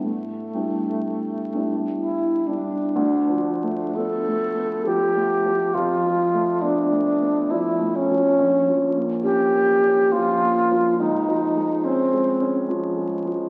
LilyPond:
<<
  \new Staff \with { instrumentName = "Alto flute" } { \time 3/4 \key d \dorian \tempo 4 = 68 a2 e'8 d'8~ | d'4 a'4 g'4 | f'4 d'4 e'8 cis'8~ | cis'8 r8 g'4 f'4 |
dis'4 bis4 r4 | }
  \new Staff \with { instrumentName = "Grand piano" } { \time 3/4 \key d \dorian a,8 <g b d' e'>4 <g b d' e'>4 <g b d' e'>8 | \tuplet 3/2 { d,8 f8 a8 b8 a8 b8 f8 a8 f8 } | \tuplet 3/2 { f,8 f8 a8 b8 a8 b8 f8 a8 f8 } | \tuplet 3/2 { bes,,8 f8 bes8 des'8 bes8 des'8 f8 bes8 f8 } |
\tuplet 3/2 { cis,8 eis8 gis8 cis'8 gis8 cis'8 eis8 gis8 eis8 } | }
>>